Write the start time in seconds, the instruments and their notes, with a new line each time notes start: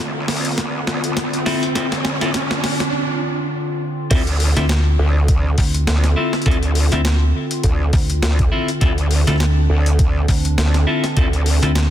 Already playing: wobble bass D2, ambient pad D3 C4 F4, riser
0.28 wobble bass D2, snare, open hi-hat
0.37 open hi-hat
0.45 closed hi-hat, open hi-hat
0.51 open hi-hat
0.58 kick, snare, closed hi-hat
0.87 wobble bass D2, snare
1.04 closed hi-hat
1.17 wobble bass D2, kick, snare, closed hi-hat
1.33 closed hi-hat
1.46 clean electric guitar C4 E4 F4 A4, snare, open hi-hat
1.63 closed hi-hat
1.75 wobble bass D2, clean electric guitar C4 E4 F4 A4, kick, snare, closed hi-hat
1.92 snare, closed hi-hat
2.05 snare
2.21 wobble bass D2, clean electric guitar C4 E4 F4 A4, snare, closed hi-hat
2.34 kick, snare, closed hi-hat
2.51 snare
2.64 snare, open hi-hat
2.80 snare, closed hi-hat
4.10 wobble bass D2, ambient pad D3 C4 F4, clean electric guitar C4 E4 F4 A4, kick, closed hi-hat, crash
4.27 closed hi-hat
4.40 open hi-hat
4.57 fm bass D2, clean electric guitar C4 E4 F4 A4, snare, closed hi-hat
4.69 snare, closed hi-hat
4.99 wobble bass D2
5.28 kick, closed hi-hat
5.58 fm bass D2, kick, open hi-hat
5.74 closed hi-hat
5.87 wobble bass D2, snare, closed hi-hat
6.04 snare, closed hi-hat
6.16 clean electric guitar C4 E4 F4 A4
6.33 snare, closed hi-hat
6.42 closed hi-hat
6.46 wobble bass D2, clean electric guitar C4 E4 F4 A4, kick, closed hi-hat
6.51 closed hi-hat
6.63 closed hi-hat
6.75 open hi-hat
6.92 fm bass D2, clean electric guitar C4 E4 F4 A4, closed hi-hat
7.05 snare, closed hi-hat
7.51 closed hi-hat
7.63 wobble bass D2, kick, closed hi-hat
7.93 fm bass D2, kick, open hi-hat
8.10 closed hi-hat
8.22 wobble bass D2, snare, closed hi-hat
8.39 kick, closed hi-hat
8.52 clean electric guitar C4 E4 F4 A4
8.68 closed hi-hat
8.81 wobble bass D2, clean electric guitar C4 E4 F4 A4, ambient pad D4, kick, closed hi-hat
8.98 closed hi-hat
9.11 open hi-hat
9.27 fm bass D2, clean electric guitar C4 E4 F4 A4, snare, closed hi-hat
9.30 snare
9.36 snare
9.40 snare, closed hi-hat
9.46 snare
9.50 snare
9.70 wobble bass D2
9.86 closed hi-hat
9.99 kick, closed hi-hat
10.28 fm bass D2, kick, open hi-hat
10.45 closed hi-hat
10.58 wobble bass D2, snare, closed hi-hat
10.74 snare, closed hi-hat
10.87 clean electric guitar C4 E4 F4 A4
11.04 snare, closed hi-hat
11.17 wobble bass D2, clean electric guitar C4 E4 F4 A4, kick, closed hi-hat
11.33 closed hi-hat
11.46 open hi-hat
11.62 fm bass D2, clean electric guitar C4 E4 F4 A4, closed hi-hat
11.75 snare, closed hi-hat